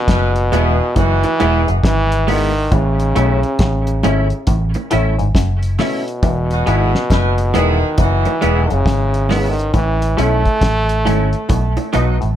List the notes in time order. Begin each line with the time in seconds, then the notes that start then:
Already playing: B2
0.08 F#1 F#2 G#3 E4 B4, kick, snare, closed hi-hat
0.36 closed hi-hat
0.52 E1 E2 E3 G#3 B3 E4 G#4 B4 E5, closed hi-hat, high bongo, low bongo
0.96 F#1 F#2 E3 F#3 D#4 F#4, kick, closed hi-hat, high bongo
1.23 muted clean electric guitar stroke, closed hi-hat, high bongo
1.40 E1 E2 E3 G#3 B3 E4 G#4 B4 E5, closed hi-hat, high bongo
1.68 F#1 F#2, closed hi-hat
1.84 G#1 G#2 E3, kick, snare, closed hi-hat
2.12 closed hi-hat
2.27 D#3 G#3 B3 E4 G#4 B4 E5, open hi-hat, low bongo
2.72 A1 A2 C#3, kick, closed hi-hat, high bongo
3.00 closed hi-hat
3.15 B1 B2 A3 C#4 E4 A4 C#5 E5, closed hi-hat
3.43 closed hi-hat
3.59 A1 A2, kick, snare, closed hi-hat
3.87 closed hi-hat
4.03 G#1 G#2 A3 C#4 E4 A4 C#5 E5, closed hi-hat, high bongo, low bongo
4.30 closed hi-hat
4.47 A1 A2, kick, closed hi-hat, high bongo
4.74 muted clean electric guitar stroke, closed hi-hat, high bongo
4.91 A1 A2 A3 C#4 E4 A4 C#5 E5, closed hi-hat, high bongo
5.19 G#1 G#2, closed hi-hat
5.35 F#1 F#2, kick, snare, closed hi-hat
5.63 closed hi-hat
5.79 B2 A3 C#4 E4 A4 C#5 E5, snare, open hi-hat, low bongo
6.08 closed hi-hat
6.23 E1 E2, kick, closed hi-hat, high bongo
6.51 F#3 D#4 F#4, closed hi-hat
6.66 G#1 G#2 E3 G#3 B3 E4 G#4 B4 E5, closed hi-hat
6.95 snare
7.10 F#1 F#2 G#3 E4 B4, kick, snare, closed hi-hat
7.38 closed hi-hat
7.54 E1 E2 D#3 G#3 B3 E4 G#4 B4 E5, closed hi-hat, high bongo, low bongo
7.98 F#1 F#2 E3 F#3 D#4 F#4, kick, closed hi-hat, high bongo
8.25 muted clean electric guitar stroke, closed hi-hat, high bongo
8.41 E1 E2 E3 G#3 B3 E4 G#4 B4 E5, closed hi-hat, high bongo
8.70 F#1 F#2 C#3, closed hi-hat
8.86 G#1 G#2, kick, snare, closed hi-hat
9.14 closed hi-hat
9.29 D#3 G#3 B3 E4 G#4 B4 E5, snare, open hi-hat, low bongo
9.40 C#3
9.49 D#3
9.59 closed hi-hat
9.74 A1 A2 E3, kick, closed hi-hat, high bongo
10.02 closed hi-hat
10.17 B1 B2 A3 C#4 E4 A4 C#5 E5, closed hi-hat
10.46 kick, closed hi-hat
10.61 A1 A2, kick, snare, closed hi-hat
10.89 closed hi-hat
11.05 G#1 G#2 A3 C#4 E4 A4 C#5 E5, closed hi-hat, high bongo
11.33 closed hi-hat
11.49 B1 B2, kick, closed hi-hat, high bongo
11.77 muted clean electric guitar stroke, closed hi-hat, high bongo
11.93 B1 B2 F#3 B3 D#4 F#4 B4 D#5, closed hi-hat, high bongo
12.21 A1 A2, closed hi-hat